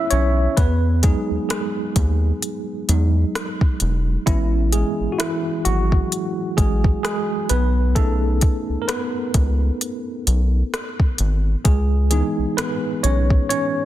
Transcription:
Already playing: C#4 E4 C#5 E5
0.10 B1 C#4 C#5, closed hi-hat
0.57 E2 B3 B4, kick, closed hi-hat
1.03 F#3 G#3 D#4 G#4, kick, closed hi-hat
1.31 D#2
1.49 G#3 G#4, cross-stick, closed hi-hat
1.96 D#2, kick, closed hi-hat
2.42 closed hi-hat
2.88 E2 F#3 G#3 D#4, closed hi-hat
3.35 cross-stick, closed hi-hat
3.61 kick
3.80 E1, closed hi-hat
4.26 A1 E3 G#3 B3 C#4 E4, kick, closed hi-hat
4.72 G#3 G#4, closed hi-hat
5.00 G#1
5.12 F#4
5.18 E3 E4, cross-stick, closed hi-hat
5.65 G#1 F#3 F#4, closed hi-hat
5.92 kick
6.12 closed hi-hat
6.57 A1 G#3 G#4, kick, closed hi-hat
6.84 kick
7.03 G#3 G#4, cross-stick, closed hi-hat
7.49 B1 B3 B4, closed hi-hat
7.95 A3 C#4 D#4 G#4 A4, kick, closed hi-hat
8.41 kick, closed hi-hat
8.69 C#2
8.82 A#4
8.88 B3 B4, cross-stick, closed hi-hat
9.34 C#2, kick, closed hi-hat
9.81 closed hi-hat
10.27 B1, closed hi-hat
10.74 cross-stick, closed hi-hat
11.00 kick
11.18 G#1, closed hi-hat
11.65 C#2 G#3 G#4, kick, closed hi-hat
12.11 E3 G#3 B3 D#4 G#4, closed hi-hat
12.38 B1
12.57 B3 B4, cross-stick, closed hi-hat
13.03 B1 C#4 C#5, closed hi-hat
13.30 kick
13.49 C#4 C#5, closed hi-hat

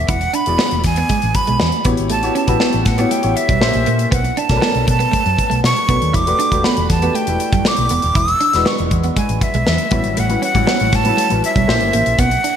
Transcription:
Already playing: B3 F#4 G4 A4 D5 E5
0.08 E1 E4 F#5, kick, closed hi-hat
0.21 muted clean electric guitar stroke, closed hi-hat
0.33 D4 B5, closed hi-hat
0.46 E1 B3 E4 F#4 G#4 D5, closed hi-hat
0.58 B3, snare
0.71 E1, closed hi-hat
0.84 E2 G#5, muted clean electric guitar stroke, kick, snare, closed hi-hat
0.96 B3, closed hi-hat
1.09 G#3, kick, closed hi-hat
1.22 A1, closed hi-hat
1.35 B5, muted clean electric guitar stroke, kick, closed hi-hat
1.47 B1 G#3, closed hi-hat
1.60 E2, snare
1.72 closed hi-hat
1.85 A1 B3 E4 F#4 G4 C#5, kick, closed hi-hat
1.97 G#1, closed hi-hat
2.10 A1 A3 A5, closed hi-hat
2.23 B3 E4 F#4 G4 C#5, muted clean electric guitar stroke, closed hi-hat
2.35 C#4 A5, closed hi-hat
2.47 A1 B3 E4 F#4 G4 B4, kick, closed hi-hat
2.60 B3, snare
2.73 A1, closed hi-hat
2.85 A2 F#5, muted clean electric guitar stroke, kick, snare, closed hi-hat
2.98 B3 E4 F#4 G4 C#5, closed hi-hat
3.11 A3 G5, closed hi-hat
3.22 A1 B3 E4 F#4 G4 C#5, closed hi-hat
3.36 E5, muted clean electric guitar stroke, closed hi-hat
3.49 B1 G3, kick, closed hi-hat
3.60 A#1 A#3 C#4 E4 G4 C5, snare
3.73 A#1, closed hi-hat
3.86 A#2 A#3, closed hi-hat
3.99 closed hi-hat
4.11 B1 B3 F#5, kick, closed hi-hat
4.24 muted clean electric guitar stroke, closed hi-hat
4.37 D4 A5, closed hi-hat
4.49 B1 A3 C#4 D4 F#4 A#4, kick, snare, closed hi-hat
4.57 B4
4.62 B3, snare
4.75 B1, closed hi-hat
4.87 B2 A5, muted clean electric guitar stroke, kick, closed hi-hat
4.99 B3, closed hi-hat
5.12 A3, kick, closed hi-hat
5.26 F#2, closed hi-hat
5.37 muted clean electric guitar stroke, kick, closed hi-hat
5.50 B1 A3, closed hi-hat
5.64 B2 C#6, snare
5.76 closed hi-hat
5.89 B1 A3 B3 C#4 D4 F#4 B4, kick, closed hi-hat
6.02 D#2, closed hi-hat
6.13 E1 E4 D6, kick, closed hi-hat
6.26 A3 D4 F#4 G4 B4, muted clean electric guitar stroke, closed hi-hat
6.39 D4, closed hi-hat
6.51 E1 A3 D4 F#4 G4 B4, kick, closed hi-hat
6.64 B3 B5, snare
6.77 E1, closed hi-hat
6.89 E2 A5, muted clean electric guitar stroke, kick, snare, closed hi-hat
7.02 A3 B3 D4 F#4 G4 B4, closed hi-hat
7.15 A3 G5, closed hi-hat
7.27 E1 A3 D4 E4 G4 B4, closed hi-hat
7.40 muted clean electric guitar stroke, closed hi-hat
7.53 F#1 G3, kick, closed hi-hat
7.65 D6, snare
7.77 B1, closed hi-hat
7.89 E1 B3, closed hi-hat
8.02 D#1, closed hi-hat
8.15 E1 E4 E6, kick, closed hi-hat
8.28 muted clean electric guitar stroke, closed hi-hat
8.40 D4, closed hi-hat
8.53 E1 G#3 D4 E4 F#4 B4, snare, closed hi-hat
8.65 B3 C#6, snare
8.78 E1, closed hi-hat
8.91 E2, muted clean electric guitar stroke, kick, closed hi-hat
9.03 B3, closed hi-hat
9.16 G#3 G#5, kick, closed hi-hat
9.29 A1, closed hi-hat
9.41 E5, muted clean electric guitar stroke, kick, closed hi-hat
9.54 B1 G#3, closed hi-hat
9.67 E2, snare
9.78 closed hi-hat
9.91 A1 G3 B3 C#4 E4 F#4 B4, kick, closed hi-hat
10.04 G#1, closed hi-hat
10.17 A1 A3 F#5, closed hi-hat
10.29 G3 C#4 E4 F#4 B4, muted clean electric guitar stroke, closed hi-hat
10.42 C#4 F#5, closed hi-hat
10.54 A1 G3 C#4 E4 F#4 C#5, kick, closed hi-hat
10.67 B3, snare
10.80 A1, closed hi-hat
10.92 A2 A5, muted clean electric guitar stroke, kick, snare, closed hi-hat
11.04 G3 B3 C#4 E4 F#4 B4, closed hi-hat
11.17 A3, closed hi-hat
11.30 A1 G3 C#4 E4 F#4 B4, closed hi-hat
11.43 E5, muted clean electric guitar stroke, closed hi-hat
11.56 B1 G3, kick, closed hi-hat
11.68 A#1 A#3 C#4 E4 G4 C5, snare
11.81 G1, closed hi-hat
11.93 A1 A#3, closed hi-hat
12.06 A#1, closed hi-hat
12.19 B1 B3 F#5, kick, closed hi-hat
12.31 muted clean electric guitar stroke, closed hi-hat
12.44 D4, closed hi-hat

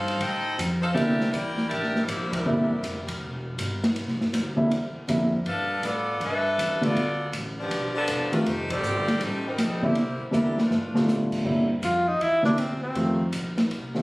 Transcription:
Already playing: G2 D#4 A4 C5 F5
0.08 ride
0.20 A2 D#4 A4 C5 G5, kick, ride
0.58 F2, kick, hi-hat pedal, ride
0.81 D#4 A4 C5 F5
0.92 C2 D3 G3 A#3 C4 D4 E4 G4 A#4 E5, kick
0.97 ride
1.20 snare
1.31 E2 E4 A#4 D5 G5, kick, hi-hat pedal, ride
1.57 snare
1.68 A1 D4 G4 A#4 E5, kick, ride
1.83 snare
1.95 snare
2.04 A#3 E4 G4 C5
2.08 A#1, kick, hi-hat pedal, ride
2.31 G3 D4 E4 A#4, kick, ride
2.45 G1 D3 G3 A#3 C4 E4
2.70 kick
2.83 F1, kick, hi-hat pedal, ride
3.08 kick, ride
3.20 E1, kick
3.58 G1, kick, hi-hat pedal, ride
3.84 snare, ride
3.95 C2, kick, ride
4.08 A#1, snare
4.20 G1, snare
4.33 D2, kick, snare, hi-hat pedal, ride
4.56 D3 G3 A#3 C4 E4, kick
4.71 E2, kick, ride
4.94 muted upright bass stroke
5.07 F2 D3 G3 A#3 C4 E4, kick, snare, hi-hat pedal, ride
5.33 kick
5.45 G2 D4 A4 B4 F5, kick, ride
5.83 A2 B3 F4 A4 D5, kick, hi-hat pedal, ride
6.20 G2 D4 A4 B4 E5, kick, ride
6.58 E2, kick, hi-hat pedal, ride
6.81 D3 G3 A3 B3 F4 A4 D5, ride
6.95 D2, kick, ride
7.32 A1, kick, hi-hat pedal, ride
7.58 F3 B3 D4 G4
7.70 B1, kick, ride
7.95 F3 B3 D4 A4
8.08 E1, kick, hi-hat pedal, ride
8.32 D#3 G3 A3 C4 D4 F4 B4, ride
8.45 F1 A3 D#4 G4 C5, kick, ride
8.70 C4 G4 A4 D5, kick, ride
8.83 G1, hi-hat pedal
9.08 snare, ride
9.20 A1 A3 D#4 G4 C5, kick, ride
9.46 G3 C4 D#4 A#4
9.58 A#1 G3 C4 D#4 A4, kick, snare, hi-hat pedal, ride
9.82 D3 G3 A#3 C4 E4 G4 C5, kick
9.95 C2, kick, ride
10.20 muted upright bass stroke
10.31 E2 D3 G3 A#3 C4 D4 E4 A#4, snare, hi-hat pedal
10.58 A3 D4 F4 B4, snare
10.70 G2, snare
10.94 D3 G3 A3 B3 F4, muted upright bass stroke, snare
11.07 A2, snare, hi-hat pedal
11.32 kick, crash
11.44 G2 D3 G3 A#3 C4 E4, kick
11.82 F2 F4, kick, hi-hat pedal, ride
12.08 D#4
12.20 E2 E4, kick, ride
12.43 D3 G3 A#3 C4 D4 E4, snare
12.57 D2 C4, kick, hi-hat pedal, ride
12.83 C4
12.95 F2 D#3 G3 A3 C4 F4, kick, ride
13.32 A#1, kick, hi-hat pedal, ride
13.58 snare, ride
13.70 C2, kick, ride
13.95 D#3 G3 A3 C4 F4, snare

